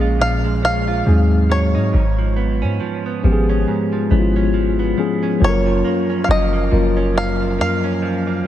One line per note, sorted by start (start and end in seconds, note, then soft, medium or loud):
0.00 1.03 A#1 loud
0.00 0.18 A#2 medium
0.00 1.08 F3 loud
0.00 0.44 G#3 medium
0.00 1.06 G#3 medium
0.00 1.08 A#3 medium
0.00 0.62 C#4 medium
0.00 1.08 C#4 medium
0.00 0.87 F4 medium
0.00 1.08 G#4 loud
0.00 0.21 D#5 medium
0.19 1.06 A#2 medium
0.19 0.64 F5 loud
0.44 1.49 G#3 medium
0.63 1.16 C#4 medium
0.63 1.51 F5 loud
0.88 1.16 F4 medium
1.05 1.77 D#2 loud
1.05 1.92 G#2 medium
1.05 1.78 F#3 medium
1.05 1.79 G#3 medium
1.05 1.79 C4 medium
1.05 1.79 D#4 medium
1.05 1.80 G#4 medium
1.50 2.03 F#3 medium
1.50 3.21 C#5 medium
1.75 1.93 G#2 loud
1.75 2.03 D#4 medium
1.93 2.64 G#1 loud
1.93 3.67 G#2 medium
2.19 2.80 F3 medium
2.36 3.05 B3 medium
2.62 2.80 G#2 loud
2.62 3.49 C#4 medium
2.80 3.24 F3 medium
3.06 4.10 B3 medium
3.23 3.66 G#1 loud
3.23 3.89 F3 medium
3.23 3.92 F3 medium
3.23 3.90 G#3 medium
3.23 3.90 B3 medium
3.23 3.90 C#4 medium
3.23 3.32 G4 medium
3.33 3.94 G#4 loud
3.50 4.36 C#4 medium
3.68 5.41 G#2 medium
3.93 4.53 F3 medium
4.10 4.94 G#1 loud
4.10 4.76 F3 medium
4.10 4.77 G#3 medium
4.10 4.78 B3 medium
4.10 4.77 B3 medium
4.10 4.77 C#4 medium
4.10 4.19 E4 medium
4.19 4.81 F4 medium
4.36 5.22 C#4 medium
4.54 4.97 F3 medium
4.79 5.51 B3 medium
4.97 5.31 F3 medium
4.97 5.66 F3 medium
4.97 5.31 G#3 medium
4.97 5.31 B3 medium
4.97 5.32 C#4 medium
4.97 5.32 G#4 medium
5.23 6.09 C#4 medium
5.40 5.83 F#1 loud
5.40 7.14 F#2 medium
5.40 6.36 F#3 loud
5.40 6.36 A#3 medium
5.40 6.36 C#4 medium
5.40 6.37 F4 medium
5.40 5.50 A4 medium
5.44 6.24 C#5 medium
5.49 6.40 A#4 loud
5.66 6.27 F3 medium
5.85 6.53 A#3 medium
6.10 6.96 C#4 medium
6.24 6.70 F3 medium
6.24 6.29 F5 medium
6.29 6.70 F#1 loud
6.29 7.17 D#5 loud
6.53 7.58 A#3 medium
6.71 7.61 F#1 loud
6.71 7.39 F3 medium
6.71 7.97 F#3 medium
6.71 7.98 A#3 medium
6.71 7.98 C#4 medium
6.71 7.98 F4 medium
6.71 7.99 A#4 medium
6.97 7.83 C#4 medium
7.15 8.46 F#2 medium
7.15 7.60 F5 loud
7.41 8.01 F3 medium
7.59 8.42 F#2 loud
7.59 8.27 A#3 medium
7.59 8.47 F5 loud
7.84 8.47 C#4 medium
8.02 8.47 F3 medium
8.27 8.47 A#3 medium